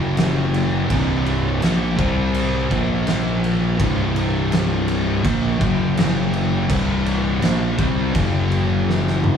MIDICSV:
0, 0, Header, 1, 4, 480
1, 0, Start_track
1, 0, Tempo, 724638
1, 594, Time_signature, 4, 2, 24, 8
1, 6207, End_track
2, 0, Start_track
2, 0, Title_t, "Distorted electric guitar"
2, 0, Program_c, 0, 30
2, 0, Note_on_c, 0, 42, 96
2, 0, Note_on_c, 0, 49, 101
2, 0, Note_on_c, 0, 54, 105
2, 583, Note_off_c, 0, 42, 0
2, 589, Note_off_c, 0, 49, 0
2, 589, Note_on_c, 0, 36, 84
2, 590, Note_off_c, 0, 54, 0
2, 596, Note_on_c, 0, 43, 97
2, 601, Note_on_c, 0, 48, 102
2, 1064, Note_off_c, 0, 36, 0
2, 1068, Note_off_c, 0, 43, 0
2, 1070, Note_off_c, 0, 48, 0
2, 1073, Note_on_c, 0, 46, 84
2, 1075, Note_on_c, 0, 53, 94
2, 1080, Note_on_c, 0, 58, 101
2, 1306, Note_off_c, 0, 46, 0
2, 1307, Note_off_c, 0, 53, 0
2, 1310, Note_off_c, 0, 58, 0
2, 1311, Note_on_c, 0, 48, 91
2, 1316, Note_on_c, 0, 55, 91
2, 1322, Note_on_c, 0, 60, 112
2, 1785, Note_off_c, 0, 48, 0
2, 1788, Note_off_c, 0, 55, 0
2, 1791, Note_off_c, 0, 60, 0
2, 1801, Note_on_c, 0, 46, 99
2, 1810, Note_on_c, 0, 53, 99
2, 1815, Note_on_c, 0, 58, 106
2, 2510, Note_off_c, 0, 46, 0
2, 2514, Note_off_c, 0, 53, 0
2, 2517, Note_off_c, 0, 58, 0
2, 2519, Note_on_c, 0, 36, 95
2, 2524, Note_on_c, 0, 43, 89
2, 2527, Note_on_c, 0, 48, 108
2, 3467, Note_off_c, 0, 36, 0
2, 3469, Note_off_c, 0, 43, 0
2, 3469, Note_on_c, 0, 46, 90
2, 3472, Note_on_c, 0, 53, 109
2, 3473, Note_off_c, 0, 48, 0
2, 3478, Note_on_c, 0, 58, 112
2, 3704, Note_off_c, 0, 46, 0
2, 3705, Note_off_c, 0, 53, 0
2, 3707, Note_on_c, 0, 42, 104
2, 3709, Note_off_c, 0, 58, 0
2, 3713, Note_on_c, 0, 49, 100
2, 3719, Note_on_c, 0, 54, 110
2, 4423, Note_off_c, 0, 42, 0
2, 4427, Note_off_c, 0, 49, 0
2, 4429, Note_off_c, 0, 54, 0
2, 4432, Note_on_c, 0, 36, 84
2, 4434, Note_on_c, 0, 43, 90
2, 4440, Note_on_c, 0, 48, 106
2, 4906, Note_off_c, 0, 36, 0
2, 4907, Note_off_c, 0, 43, 0
2, 4909, Note_on_c, 0, 46, 88
2, 4910, Note_off_c, 0, 48, 0
2, 4917, Note_on_c, 0, 53, 84
2, 4921, Note_on_c, 0, 58, 99
2, 5144, Note_off_c, 0, 46, 0
2, 5148, Note_off_c, 0, 53, 0
2, 5150, Note_on_c, 0, 48, 91
2, 5151, Note_off_c, 0, 58, 0
2, 5156, Note_on_c, 0, 55, 105
2, 5160, Note_on_c, 0, 60, 90
2, 5385, Note_off_c, 0, 48, 0
2, 5388, Note_off_c, 0, 55, 0
2, 5390, Note_off_c, 0, 60, 0
2, 5390, Note_on_c, 0, 42, 94
2, 5401, Note_on_c, 0, 49, 93
2, 5402, Note_on_c, 0, 54, 104
2, 6207, Note_off_c, 0, 42, 0
2, 6207, Note_off_c, 0, 49, 0
2, 6207, Note_off_c, 0, 54, 0
2, 6207, End_track
3, 0, Start_track
3, 0, Title_t, "Fingered electric bass"
3, 0, Program_c, 1, 33
3, 0, Note_on_c, 1, 30, 102
3, 569, Note_off_c, 1, 30, 0
3, 599, Note_on_c, 1, 24, 106
3, 1050, Note_off_c, 1, 24, 0
3, 1081, Note_on_c, 1, 34, 90
3, 1301, Note_off_c, 1, 34, 0
3, 1318, Note_on_c, 1, 36, 97
3, 1770, Note_off_c, 1, 36, 0
3, 1796, Note_on_c, 1, 34, 106
3, 2488, Note_off_c, 1, 34, 0
3, 2518, Note_on_c, 1, 24, 108
3, 3450, Note_off_c, 1, 24, 0
3, 3479, Note_on_c, 1, 34, 99
3, 3700, Note_off_c, 1, 34, 0
3, 3716, Note_on_c, 1, 30, 97
3, 4409, Note_off_c, 1, 30, 0
3, 4438, Note_on_c, 1, 24, 108
3, 4890, Note_off_c, 1, 24, 0
3, 4918, Note_on_c, 1, 34, 86
3, 5139, Note_off_c, 1, 34, 0
3, 5159, Note_on_c, 1, 36, 102
3, 5380, Note_off_c, 1, 36, 0
3, 5402, Note_on_c, 1, 30, 92
3, 6207, Note_off_c, 1, 30, 0
3, 6207, End_track
4, 0, Start_track
4, 0, Title_t, "Drums"
4, 113, Note_on_c, 9, 49, 82
4, 123, Note_on_c, 9, 38, 115
4, 179, Note_off_c, 9, 49, 0
4, 189, Note_off_c, 9, 38, 0
4, 359, Note_on_c, 9, 49, 65
4, 425, Note_off_c, 9, 49, 0
4, 596, Note_on_c, 9, 49, 84
4, 597, Note_on_c, 9, 36, 101
4, 662, Note_off_c, 9, 49, 0
4, 663, Note_off_c, 9, 36, 0
4, 837, Note_on_c, 9, 49, 62
4, 904, Note_off_c, 9, 49, 0
4, 1073, Note_on_c, 9, 49, 75
4, 1083, Note_on_c, 9, 38, 111
4, 1140, Note_off_c, 9, 49, 0
4, 1149, Note_off_c, 9, 38, 0
4, 1315, Note_on_c, 9, 49, 62
4, 1316, Note_on_c, 9, 36, 113
4, 1381, Note_off_c, 9, 49, 0
4, 1382, Note_off_c, 9, 36, 0
4, 1553, Note_on_c, 9, 49, 85
4, 1619, Note_off_c, 9, 49, 0
4, 1795, Note_on_c, 9, 36, 102
4, 1795, Note_on_c, 9, 49, 53
4, 1862, Note_off_c, 9, 36, 0
4, 1862, Note_off_c, 9, 49, 0
4, 2032, Note_on_c, 9, 49, 78
4, 2042, Note_on_c, 9, 38, 101
4, 2099, Note_off_c, 9, 49, 0
4, 2108, Note_off_c, 9, 38, 0
4, 2278, Note_on_c, 9, 49, 61
4, 2344, Note_off_c, 9, 49, 0
4, 2515, Note_on_c, 9, 36, 104
4, 2516, Note_on_c, 9, 49, 80
4, 2581, Note_off_c, 9, 36, 0
4, 2582, Note_off_c, 9, 49, 0
4, 2755, Note_on_c, 9, 49, 67
4, 2822, Note_off_c, 9, 49, 0
4, 2994, Note_on_c, 9, 49, 82
4, 3004, Note_on_c, 9, 38, 116
4, 3060, Note_off_c, 9, 49, 0
4, 3070, Note_off_c, 9, 38, 0
4, 3232, Note_on_c, 9, 49, 70
4, 3298, Note_off_c, 9, 49, 0
4, 3475, Note_on_c, 9, 36, 118
4, 3477, Note_on_c, 9, 49, 89
4, 3541, Note_off_c, 9, 36, 0
4, 3543, Note_off_c, 9, 49, 0
4, 3716, Note_on_c, 9, 36, 108
4, 3719, Note_on_c, 9, 49, 60
4, 3782, Note_off_c, 9, 36, 0
4, 3785, Note_off_c, 9, 49, 0
4, 3957, Note_on_c, 9, 49, 87
4, 3967, Note_on_c, 9, 38, 115
4, 4023, Note_off_c, 9, 49, 0
4, 4033, Note_off_c, 9, 38, 0
4, 4196, Note_on_c, 9, 49, 64
4, 4262, Note_off_c, 9, 49, 0
4, 4436, Note_on_c, 9, 36, 110
4, 4439, Note_on_c, 9, 49, 89
4, 4502, Note_off_c, 9, 36, 0
4, 4505, Note_off_c, 9, 49, 0
4, 4679, Note_on_c, 9, 49, 65
4, 4745, Note_off_c, 9, 49, 0
4, 4917, Note_on_c, 9, 49, 81
4, 4927, Note_on_c, 9, 38, 105
4, 4983, Note_off_c, 9, 49, 0
4, 4993, Note_off_c, 9, 38, 0
4, 5156, Note_on_c, 9, 49, 64
4, 5157, Note_on_c, 9, 36, 118
4, 5223, Note_off_c, 9, 36, 0
4, 5223, Note_off_c, 9, 49, 0
4, 5398, Note_on_c, 9, 36, 116
4, 5398, Note_on_c, 9, 49, 87
4, 5464, Note_off_c, 9, 36, 0
4, 5464, Note_off_c, 9, 49, 0
4, 5641, Note_on_c, 9, 49, 57
4, 5707, Note_off_c, 9, 49, 0
4, 5893, Note_on_c, 9, 38, 61
4, 5959, Note_off_c, 9, 38, 0
4, 6011, Note_on_c, 9, 38, 68
4, 6078, Note_off_c, 9, 38, 0
4, 6120, Note_on_c, 9, 45, 103
4, 6186, Note_off_c, 9, 45, 0
4, 6207, End_track
0, 0, End_of_file